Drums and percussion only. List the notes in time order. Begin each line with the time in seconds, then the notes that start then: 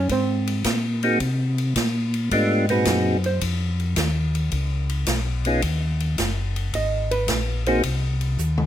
0.09 kick, ride
0.47 ride
0.64 kick, snare, hi-hat pedal, ride
1.03 ride
1.20 kick, ride
1.58 ride
1.76 kick, snare, hi-hat pedal, ride
2.14 ride
2.31 kick, ride
2.69 ride
2.85 kick, snare, hi-hat pedal, ride
3.24 ride
3.41 kick, ride
3.80 ride
3.96 kick, snare, hi-hat pedal, ride
4.35 ride
4.52 kick, ride
4.89 ride
5.06 kick, snare, hi-hat pedal, ride
5.45 ride
5.62 kick, ride
6.00 ride
6.18 kick, snare, hi-hat pedal, ride
6.56 ride
6.74 kick, ride
7.11 ride
7.28 kick, snare, hi-hat pedal, ride
7.66 ride
7.83 kick, ride
8.21 ride
8.38 hi-hat pedal
8.57 mid tom